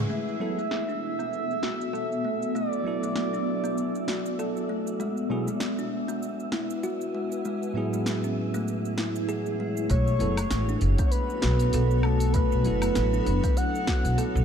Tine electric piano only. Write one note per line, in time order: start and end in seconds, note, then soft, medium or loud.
0.40 0.57 F#3 medium
0.40 0.57 B3 medium
0.40 0.57 E4 medium
0.40 0.58 A4 medium
2.84 4.97 F#3 medium
2.84 4.98 B3 medium
2.84 4.99 E4 medium
2.84 4.99 A4 medium
5.30 5.47 B2 medium
5.30 5.47 F#3 medium
5.30 5.47 B3 medium
5.30 5.47 E4 medium
5.30 5.48 G#4 medium
7.74 9.87 A2 medium
7.74 9.88 F#3 medium
7.74 9.88 B3 medium
7.74 9.89 E4 medium
7.74 9.89 G#4 medium
10.19 10.36 F#3 medium
10.19 10.37 B3 medium
10.19 10.37 E4 medium
10.19 10.37 A4 loud
12.63 14.45 F#3 medium
12.63 14.45 B3 medium
12.63 14.45 E4 medium
12.63 14.45 A4 medium